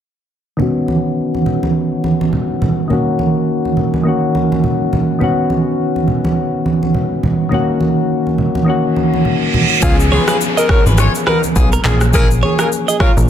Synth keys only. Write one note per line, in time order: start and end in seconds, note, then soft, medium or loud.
0.57 2.85 D#3 medium
0.57 2.86 B3 medium
0.57 2.87 C#4 medium
0.62 2.88 F#4 medium
2.88 4.02 D#3 medium
2.88 4.03 A#3 medium
2.88 4.04 C#4 medium
2.93 4.05 F#4 medium
4.03 5.18 D#3 medium
4.03 5.18 A#3 medium
4.03 5.19 C#4 medium
4.08 5.20 F#4 medium
5.19 7.47 D#3 medium
5.19 7.48 B3 medium
5.19 7.48 C#4 medium
5.24 7.49 F#4 medium
7.49 8.63 D#3 medium
7.49 8.64 A#3 medium
7.49 8.65 C#4 medium
7.54 8.66 F#4 medium
8.65 9.79 D#3 medium
8.65 9.80 A#3 medium
8.65 9.81 C#4 medium
8.70 9.82 F#4 medium
9.80 11.79 F3 medium
9.80 11.80 B3 medium
9.80 11.81 C#4 medium
9.85 11.82 G#4 medium
11.82 13.30 F3 medium
11.82 13.30 A#3 medium
11.82 13.30 C#4 medium
11.87 13.30 G#4 medium